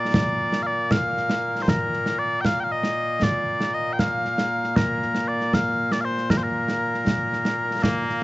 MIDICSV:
0, 0, Header, 1, 3, 480
1, 0, Start_track
1, 0, Key_signature, -2, "major"
1, 0, Tempo, 512821
1, 135, Time_signature, 6, 3, 24, 8
1, 7707, End_track
2, 0, Start_track
2, 0, Title_t, "Bagpipes"
2, 0, Program_c, 0, 109
2, 0, Note_on_c, 0, 46, 89
2, 0, Note_on_c, 0, 58, 89
2, 0, Note_on_c, 0, 74, 95
2, 586, Note_off_c, 0, 74, 0
2, 586, Note_on_c, 0, 77, 96
2, 623, Note_off_c, 0, 77, 0
2, 623, Note_on_c, 0, 74, 96
2, 855, Note_off_c, 0, 74, 0
2, 855, Note_on_c, 0, 77, 98
2, 1517, Note_off_c, 0, 77, 0
2, 1517, Note_on_c, 0, 72, 58
2, 1584, Note_off_c, 0, 72, 0
2, 1584, Note_on_c, 0, 70, 80
2, 2049, Note_off_c, 0, 70, 0
2, 2049, Note_on_c, 0, 74, 96
2, 2255, Note_off_c, 0, 74, 0
2, 2255, Note_on_c, 0, 79, 98
2, 2296, Note_off_c, 0, 79, 0
2, 2296, Note_on_c, 0, 77, 98
2, 2434, Note_off_c, 0, 77, 0
2, 2434, Note_on_c, 0, 79, 76
2, 2469, Note_off_c, 0, 79, 0
2, 2469, Note_on_c, 0, 77, 76
2, 2543, Note_off_c, 0, 77, 0
2, 2543, Note_on_c, 0, 75, 92
2, 3024, Note_off_c, 0, 75, 0
2, 3024, Note_on_c, 0, 74, 81
2, 3501, Note_off_c, 0, 74, 0
2, 3501, Note_on_c, 0, 75, 84
2, 3678, Note_off_c, 0, 75, 0
2, 3678, Note_on_c, 0, 79, 75
2, 3740, Note_off_c, 0, 79, 0
2, 3740, Note_on_c, 0, 77, 96
2, 4458, Note_off_c, 0, 77, 0
2, 4458, Note_on_c, 0, 70, 77
2, 4943, Note_off_c, 0, 70, 0
2, 4943, Note_on_c, 0, 74, 90
2, 5186, Note_off_c, 0, 74, 0
2, 5186, Note_on_c, 0, 77, 99
2, 5541, Note_off_c, 0, 77, 0
2, 5541, Note_on_c, 0, 74, 84
2, 5623, Note_off_c, 0, 74, 0
2, 5623, Note_on_c, 0, 77, 87
2, 5660, Note_off_c, 0, 77, 0
2, 5660, Note_on_c, 0, 72, 87
2, 5900, Note_off_c, 0, 72, 0
2, 5900, Note_on_c, 0, 70, 76
2, 5969, Note_off_c, 0, 70, 0
2, 5969, Note_on_c, 0, 72, 56
2, 6022, Note_off_c, 0, 72, 0
2, 6022, Note_on_c, 0, 70, 77
2, 7326, Note_off_c, 0, 58, 0
2, 7326, Note_off_c, 0, 70, 0
2, 7326, Note_on_c, 0, 58, 89
2, 7707, Note_off_c, 0, 46, 0
2, 7707, Note_off_c, 0, 58, 0
2, 7707, End_track
3, 0, Start_track
3, 0, Title_t, "Drums"
3, 131, Note_on_c, 9, 35, 63
3, 131, Note_on_c, 9, 38, 112
3, 225, Note_off_c, 9, 35, 0
3, 225, Note_off_c, 9, 38, 0
3, 491, Note_on_c, 9, 38, 65
3, 585, Note_off_c, 9, 38, 0
3, 850, Note_on_c, 9, 35, 50
3, 850, Note_on_c, 9, 38, 97
3, 943, Note_off_c, 9, 35, 0
3, 943, Note_off_c, 9, 38, 0
3, 1095, Note_on_c, 9, 38, 26
3, 1188, Note_off_c, 9, 38, 0
3, 1212, Note_on_c, 9, 38, 75
3, 1306, Note_off_c, 9, 38, 0
3, 1455, Note_on_c, 9, 38, 26
3, 1548, Note_off_c, 9, 38, 0
3, 1571, Note_on_c, 9, 35, 60
3, 1571, Note_on_c, 9, 38, 89
3, 1665, Note_off_c, 9, 35, 0
3, 1665, Note_off_c, 9, 38, 0
3, 1810, Note_on_c, 9, 38, 23
3, 1904, Note_off_c, 9, 38, 0
3, 1928, Note_on_c, 9, 38, 60
3, 2022, Note_off_c, 9, 38, 0
3, 2290, Note_on_c, 9, 35, 44
3, 2290, Note_on_c, 9, 38, 85
3, 2383, Note_off_c, 9, 35, 0
3, 2383, Note_off_c, 9, 38, 0
3, 2653, Note_on_c, 9, 38, 67
3, 2747, Note_off_c, 9, 38, 0
3, 3014, Note_on_c, 9, 35, 60
3, 3014, Note_on_c, 9, 38, 92
3, 3108, Note_off_c, 9, 35, 0
3, 3108, Note_off_c, 9, 38, 0
3, 3375, Note_on_c, 9, 38, 61
3, 3469, Note_off_c, 9, 38, 0
3, 3736, Note_on_c, 9, 35, 44
3, 3736, Note_on_c, 9, 38, 74
3, 3829, Note_off_c, 9, 35, 0
3, 3829, Note_off_c, 9, 38, 0
3, 3978, Note_on_c, 9, 38, 26
3, 4071, Note_off_c, 9, 38, 0
3, 4101, Note_on_c, 9, 38, 69
3, 4195, Note_off_c, 9, 38, 0
3, 4341, Note_on_c, 9, 38, 26
3, 4435, Note_off_c, 9, 38, 0
3, 4459, Note_on_c, 9, 35, 57
3, 4459, Note_on_c, 9, 38, 90
3, 4553, Note_off_c, 9, 35, 0
3, 4553, Note_off_c, 9, 38, 0
3, 4702, Note_on_c, 9, 38, 23
3, 4795, Note_off_c, 9, 38, 0
3, 4817, Note_on_c, 9, 38, 56
3, 4911, Note_off_c, 9, 38, 0
3, 5061, Note_on_c, 9, 38, 26
3, 5154, Note_off_c, 9, 38, 0
3, 5179, Note_on_c, 9, 35, 50
3, 5179, Note_on_c, 9, 38, 76
3, 5273, Note_off_c, 9, 35, 0
3, 5273, Note_off_c, 9, 38, 0
3, 5538, Note_on_c, 9, 38, 71
3, 5631, Note_off_c, 9, 38, 0
3, 5780, Note_on_c, 9, 38, 26
3, 5874, Note_off_c, 9, 38, 0
3, 5897, Note_on_c, 9, 35, 59
3, 5897, Note_on_c, 9, 38, 88
3, 5991, Note_off_c, 9, 35, 0
3, 5991, Note_off_c, 9, 38, 0
3, 6256, Note_on_c, 9, 38, 60
3, 6350, Note_off_c, 9, 38, 0
3, 6498, Note_on_c, 9, 38, 25
3, 6592, Note_off_c, 9, 38, 0
3, 6617, Note_on_c, 9, 35, 51
3, 6617, Note_on_c, 9, 38, 80
3, 6711, Note_off_c, 9, 35, 0
3, 6711, Note_off_c, 9, 38, 0
3, 6858, Note_on_c, 9, 38, 28
3, 6951, Note_off_c, 9, 38, 0
3, 6974, Note_on_c, 9, 38, 73
3, 7068, Note_off_c, 9, 38, 0
3, 7214, Note_on_c, 9, 38, 27
3, 7308, Note_off_c, 9, 38, 0
3, 7334, Note_on_c, 9, 35, 57
3, 7334, Note_on_c, 9, 38, 98
3, 7427, Note_off_c, 9, 35, 0
3, 7427, Note_off_c, 9, 38, 0
3, 7574, Note_on_c, 9, 38, 26
3, 7668, Note_off_c, 9, 38, 0
3, 7707, End_track
0, 0, End_of_file